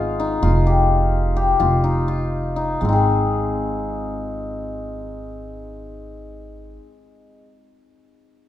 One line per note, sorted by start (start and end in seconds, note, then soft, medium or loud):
0.00 0.41 G#1 medium
0.00 1.80 B3 medium
0.00 0.82 C#4 medium
0.00 0.19 D#4 medium
0.00 0.42 F4 medium
0.00 0.73 G#4 medium
0.20 1.83 D#4 medium
0.43 1.58 F1 medium
0.43 1.59 F4 medium
0.67 1.36 G4 medium
1.36 2.87 G4 medium
1.60 2.79 F1 medium
1.60 2.08 F4 medium
1.84 2.56 D#4 soft
2.08 5.44 F4 medium
2.56 2.88 D#4 medium
2.81 6.78 G#1 medium
2.81 7.40 G#3 soft
2.81 6.85 C4 soft
2.89 6.81 D#4 soft
2.89 6.83 G#4 soft